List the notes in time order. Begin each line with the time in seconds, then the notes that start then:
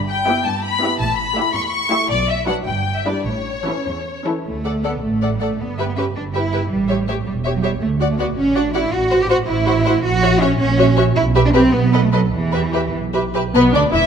Already playing: G1 G2
0.09 G5
0.27 B3 E4 G4 E5
0.46 G2 A5
0.63 B5
0.82 B3 E4 G4 E5
1.00 A1 A2 A5
1.18 B5
1.36 A3 E4 G4 E5
1.55 E2 C#6
1.61 B5
1.68 C#6
1.91 A3 E4 G4 E5
2.10 B1 B2 D5
2.28 E5
2.47 F#3 D4 F#4 B4 F#5
2.66 G1 G2 G5
2.97 E5
3.06 G3 D4 E4 B4 D5
3.26 A1 A2 C#5
3.67 E3 C#4 E4 A4
3.87 E2
4.25 E3 C#4 E4 A4
4.46 D2 A3
4.65 A4 D5 F#5
4.84 B3 A4 D5 F#5
5.04 A1 A3
5.21 A4 D5 F#5
5.33 G3
5.40 A3 A4 D5 F#5
5.60 G1 B3
5.78 G4 B4 E5
5.88 B3
5.97 C#4 G4 B4 E5
6.16 G1 D4
6.34 E4 G4 B4 E5
6.52 G4 B4 E5
6.71 A1 G3
6.89 G4 C#5 E5
7.08 A3 G4 C#5 E5
7.26 E1 G3
7.44 G4 C#5 E5
7.55 F#3
7.63 G3 G4 C#5 E5
7.81 D2 A3
8.00 F#4 D5 F#5
8.10 A3
8.19 B3 F#4 D5 F#5
8.37 A1 C#4
8.56 D4 F#4 D5 F#5
8.74 E4 F#4 D5 F#5
8.93 A1 F#4
9.11 F#4 C5 F#5
9.22 G4
9.29 F#4 C5 F#5
9.48 A1 E4
9.66 F#4 C5 F#5
9.85 F#4 C5 F#5
10.04 A#1 F#4
10.23 F#4 C#5 E5
10.41 C#4 F#4 C#5 E5
10.60 A#1 C#4
10.78 F#4 C#5 E5
10.97 F#4 C#5 E5
11.16 B1 E4
11.35 G4 B4 E5
11.45 D4
11.54 C4 G4 B4 E5
11.73 B1 B3
11.93 A4 B4 D#5
12.04 A3
12.12 F#3 A4 B4 D#5
12.33 E2 E3
12.53 G4 B4 E5
12.73 G4 B4 E5
12.94 B1
13.14 G4 B4 E5
13.34 G4 B4 E5
13.54 B1 B2 B3 B4
13.73 D2 D4 D5
13.92 E1 E2 E4 E5